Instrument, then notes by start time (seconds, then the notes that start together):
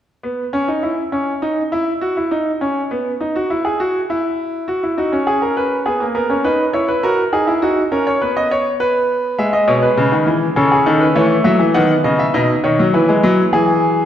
grand piano
0.23 B3
0.53 C#4
0.68 D#4
0.83 E4
1.12 C#4
1.42 D#4
1.72 E4
2.01 F#4
2.17 E4
2.31 D#4
2.61 C#4
2.91 B3
3.21 D#4
3.35 F#4
3.50 E4
3.65 G#4
3.80 F#4
4.10 E4
4.68 F#4
4.83 E4
4.97 D#4 F#4
5.12 C#4
5.27 G#4
5.42 A#4
5.57 B4
5.86 B3 G#4
6.00 A#3
6.15 B3 A#4
6.30 C#4
6.44 D#4 B4
6.73 E4 C#5
6.88 B4
7.03 F#4 A#4
7.33 D#4 G#4
7.47 E4
7.62 D#4 F#4
7.92 C#4 A#4
8.07 C#5
8.21 B3 B4
8.37 D#5
8.51 C#5
8.80 B4
9.38 G#3 E5
9.53 D#5
9.67 B2 C#5
9.82 B4
9.97 C#3
10.12 D#3
10.26 E3
10.56 C#3 C#4 A4
10.72 G#4
10.86 D#3 A4
11.01 B4
11.15 E3 A3 C#5
11.44 F#3 E5
11.59 E3
11.74 D#3 B3 F#5
12.04 C#3 D#5
12.19 E5
12.34 B2 D#4 D#5
12.64 D#3 C#5
12.79 F#3
12.94 E3 E4 B4
13.09 G#3
13.23 F#3
13.53 E3 G#4